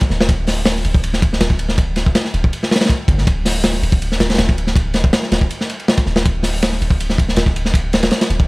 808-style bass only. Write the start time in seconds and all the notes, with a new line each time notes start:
0.10 D1
0.29 D1
0.85 D1
1.22 D1
1.41 D1
2.34 D1
3.08 G1
3.27 D1
3.83 D1
4.20 D1
4.39 D1
5.32 D1
6.07 D1
6.26 D1
6.81 D1
7.19 D1
7.37 D1
8.30 D1